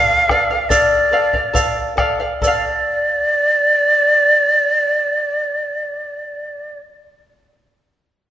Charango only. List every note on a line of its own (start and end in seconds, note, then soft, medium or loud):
0.00 0.29 A4 medium
0.00 0.30 D5 medium
0.00 0.30 F5 medium
0.30 0.50 A4 medium
0.30 0.51 D5 medium
0.30 0.49 F5 medium
0.51 0.70 D5 soft
0.51 0.70 F5 medium
0.70 1.11 A4 medium
0.70 1.11 D5 medium
0.70 1.12 F5 medium
1.13 1.34 A4 medium
1.13 1.33 D5 medium
1.13 1.32 F5 medium
1.33 1.53 D5 soft
1.33 1.54 F5 medium
1.53 1.96 A4 medium
1.53 1.97 D5 medium
1.53 1.98 F5 medium
1.97 2.20 A4 medium
1.97 2.19 D5 medium
1.97 2.19 F5 medium
2.20 2.43 D5 soft
2.20 2.43 F5 medium
2.42 7.32 A4 medium
2.42 7.35 D5 medium
2.47 7.38 F5 medium